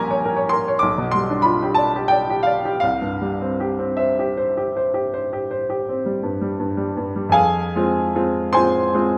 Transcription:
Already playing: A#1 A#2 G3 A#3 C#4 G4 A#4 G#5 A#5 C#6
0.11 C#5
0.25 A#4
0.37 C#5
0.49 A#4 C6
0.68 C#5
0.79 B1 D6
0.98 B2
1.11 G3 C6
1.30 D4
1.42 F4 B5
1.62 G4
1.75 D5 A5
1.96 G4
2.08 D5 G5
2.30 G4
2.43 D5 F5
2.65 G4
2.80 C2 F5
3.02 G2
3.21 G3
3.42 C4
3.60 G4
3.79 C4
3.97 C5 E5
4.19 G4
4.37 C5
4.57 G4
4.77 C5
4.94 G4
5.14 C5
5.33 G4
5.51 C5
5.70 G4
5.89 C4
6.06 G3
6.23 G2
6.41 G3
6.60 G2
6.77 G3
6.97 G2
7.16 G3
7.29 F2 G#4 F5 G#5
7.76 G#3 C4 F4
8.15 G#3 C4 F4
8.53 G#3 C4 F4 C5 G#5 C6
8.94 G#3 C4 F4

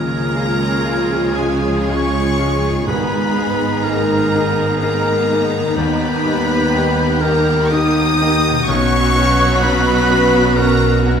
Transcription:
Already playing: C#2 C#3 F3 G#3 A#3 C#4 F4 G#4 A#4 A#5 G#6
0.35 G#3 F4 G#4
0.85 G#3 F4 G#4
1.35 G#3 F4 G#4 G#5
1.87 G#3 C#4 F4 G#4 C#5 C#6
2.39 G#3 F4 G#4
2.69 G#2
2.73 B3
2.78 D#4
2.82 D#4 G#4
2.87 G#1 G#2 D#3 B3 D#4 B4 A#5 B5
3.37 B3 D#4 G#4
3.84 A#3 D#4 G#4 A#4 A#5
4.35 A#3 D#4 G#4
4.80 A#3 D#4 G#4 A#4 A#5
5.31 A#3 D#4 G#4
5.59 D#3
5.64 G3
5.68 D#4
5.73 D#2 G4 B4 B5 G6
5.77 D#2 B3 G4
6.26 G3 D#4 G4
6.74 G3 D#4 G4
7.21 A#3 D#4 G4 A#4 A#5
7.71 A#3 D#4 G4 D#5 D#6
8.21 A#3 D#4 G4
8.50 B2
8.55 B3
8.59 C#4
8.64 B2 F#3 B3 C#4 F#4 C#6 F#6
8.68 B1 C#4 C#5
9.16 B3 C#4 F#4
9.62 B3 C#4 F#4 B4 B5
10.10 B3 C#4 F#4
10.57 B3 C#4 F#4 A#4 A#5
11.05 B3 C#4 F#4

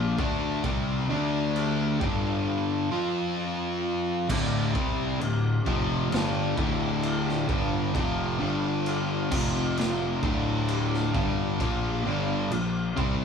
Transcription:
Already playing: A#1 A#2 F3 A#3
0.18 D2 D3 A3 D4, kick
0.64 C2 C3 G3 C4, kick, crash
1.09 D2 D3 A3 D4
1.56 crash
2.00 G1 G2 D3 G3, kick
2.91 F3 C4 F4
4.28 D1 D2 A2 D3, kick, crash
4.74 C2 C3 G3 C4, kick
5.20 D1 D2 A2, crash
5.65 F1 F2 C3 F3, kick
6.09 G1 G2 D3 G3, crash
6.14 snare
6.56 D1 D2 A2 D3, kick
7.03 crash
7.29 snare
7.48 G1 G2 D3 G3, kick
7.92 F1 F2 C3 F3, kick, crash
8.39 G1 G2 D3 G3
8.86 crash
9.31 F1 F2 C3 F3, kick, crash
9.77 snare, crash
10.22 D1 D2 A2 D3, kick
10.69 crash
10.94 snare
11.14 G1 G2 D3 G3, kick
11.58 A#1 A#2 F3 A#3, kick, crash
12.04 G1 G2 D3 G3
12.50 A#1 A#2 F3, crash
12.96 C2 C3 G3 C4, kick

